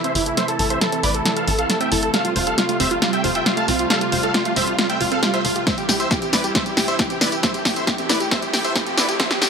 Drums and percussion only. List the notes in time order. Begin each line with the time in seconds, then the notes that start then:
0.04 closed hi-hat
0.15 open hi-hat
0.26 closed hi-hat
0.37 snare, closed hi-hat
0.48 closed hi-hat
0.59 open hi-hat
0.70 closed hi-hat
0.81 snare, closed hi-hat
0.92 closed hi-hat
1.03 open hi-hat
1.15 closed hi-hat
1.26 snare, closed hi-hat
1.37 closed hi-hat
1.48 open hi-hat
1.59 closed hi-hat
1.70 snare, closed hi-hat
1.81 closed hi-hat
1.92 open hi-hat
2.03 closed hi-hat
2.14 snare, closed hi-hat
2.25 closed hi-hat
2.36 open hi-hat
2.47 closed hi-hat
2.58 snare, closed hi-hat
2.69 closed hi-hat
2.80 open hi-hat
2.91 closed hi-hat
3.02 snare, closed hi-hat
3.13 closed hi-hat
3.24 open hi-hat
3.35 closed hi-hat
3.46 snare, closed hi-hat
3.57 closed hi-hat
3.68 open hi-hat
3.79 closed hi-hat
3.90 snare, closed hi-hat
4.01 closed hi-hat
4.12 open hi-hat
4.23 closed hi-hat
4.34 snare, closed hi-hat
4.45 closed hi-hat
4.56 open hi-hat
4.67 closed hi-hat
4.79 snare, closed hi-hat
4.90 closed hi-hat
5.01 open hi-hat
5.12 closed hi-hat
5.23 snare, closed hi-hat
5.34 closed hi-hat
5.45 open hi-hat
5.56 closed hi-hat
5.67 kick, snare, closed hi-hat, tambourine
5.78 closed hi-hat, tambourine
5.89 snare, open hi-hat, tambourine
6.00 closed hi-hat, tambourine
6.11 kick, snare, closed hi-hat, tambourine
6.22 closed hi-hat, tambourine
6.33 snare, open hi-hat, tambourine
6.44 closed hi-hat, tambourine
6.55 kick, snare, closed hi-hat, tambourine
6.66 closed hi-hat, tambourine
6.77 snare, open hi-hat, tambourine
6.88 closed hi-hat, tambourine
6.99 kick, snare, closed hi-hat, tambourine
7.10 closed hi-hat, tambourine
7.21 snare, open hi-hat, tambourine
7.32 closed hi-hat, tambourine
7.43 kick, snare, closed hi-hat, tambourine
7.54 closed hi-hat, tambourine
7.65 kick, snare, open hi-hat, tambourine
7.76 closed hi-hat, tambourine
7.87 kick, snare, closed hi-hat, tambourine
7.98 closed hi-hat, tambourine
8.09 snare, open hi-hat, tambourine
8.20 closed hi-hat, tambourine
8.31 kick, snare, closed hi-hat, tambourine
8.42 closed hi-hat, tambourine
8.53 snare, open hi-hat, tambourine
8.65 closed hi-hat, tambourine
8.76 kick, snare, closed hi-hat, tambourine
8.87 closed hi-hat, tambourine
8.98 snare, open hi-hat, tambourine
9.09 closed hi-hat, tambourine
9.20 kick, snare, closed hi-hat, tambourine
9.31 snare, closed hi-hat, tambourine
9.42 snare, open hi-hat, tambourine